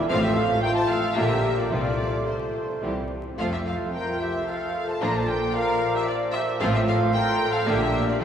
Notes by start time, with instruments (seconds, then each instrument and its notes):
0.07 double bass section A1, cello section A2, viola section F3 C4, bassoon A3, violin section C4 F4 F5, clarinet F4, flute section A4, french horn section A4, oboe C5, trumpet section F5
0.22 flute section G4, violin section E5, trumpet section E5
0.35 flute section A4, violin section F5, trumpet section F5
0.62 french horn section F4, flute section A#4, trumpet section G5, violin section G5
0.75 flute section C5, trumpet section A5, violin section A5
0.88 flute section A4, trumpet section F5, violin section F5
1.15 double bass section A#1, cello section A#2, viola section D3 A#3, bassoon A#3, violin section D4 G4 E5, french horn section G4, flute section G4, clarinet G4, oboe A#4, trumpet section E5
1.57 flute section F4, trumpet section D5, violin section D5
1.70 double bass section C2, cello section C3, timpani C3, viola section F3 A3, bassoon A3, violin section C4 F4 D5, clarinet F4, flute section F4, french horn section A4, oboe C5, trumpet section D5
2.26 bassoon A3, flute section F4, clarinet F4, trumpet section C5, violin section C5, oboe C5
2.82 double bass section C2, cello section C3, viola section E3 G3, bassoon G3, violin section C4 G4, clarinet E4, oboe C5
3.37 double bass section F1, cello section F2, viola section F3 A3, bassoon A3, violin section C4 F4 F5, french horn section F4, clarinet F4, flute section A4, oboe C5, trumpet section F5
3.52 flute section G4, trumpet section E5, violin section E5
3.66 flute section A4, trumpet section F5, violin section F5
3.93 flute section A#4, trumpet section G5, violin section G5
4.20 flute section G4, violin section E5, trumpet section E5
4.46 french horn section A4, flute section A4, violin section F5, trumpet section F5
4.87 flute section C5, trumpet section A5, violin section A5
5.01 double bass section A#1, cello section A#2, bassoon F3, viola section F3 A#3, violin section D4 F4 A#5, flute section D5, oboe D5, trumpet section A#5
5.15 flute section C5, violin section A5, trumpet section A5
5.28 flute section A#4, violin section G5, trumpet section G5
5.53 flute section A#4, french horn section A#4, violin section F5, trumpet section F5
5.93 flute section G4, violin section E5, trumpet section E5
6.06 flute section F4, french horn section F4, violin section D5, trumpet section D5
6.33 flute section G4, violin section E5, trumpet section E5
6.60 double bass section A1, cello section A2, viola section F3 C4, violin section C4 F4 F5, clarinet F4, flute section A4, oboe C5, trumpet section F5
6.73 flute section G4, violin section E5, trumpet section E5
6.86 flute section A4, violin section F5, trumpet section F5
7.12 french horn section A4, flute section A#4, violin section G5, trumpet section G5
7.52 flute section A4, trumpet section F5, violin section F5
7.65 double bass section A#1, cello section A#2, viola section D3 A#3, bassoon G3, clarinet D4, violin section D4 G4 E5, flute section G4, french horn section G4, oboe A#4, trumpet section E5
8.07 flute section F4, trumpet section D5, violin section D5
8.21 viola section A3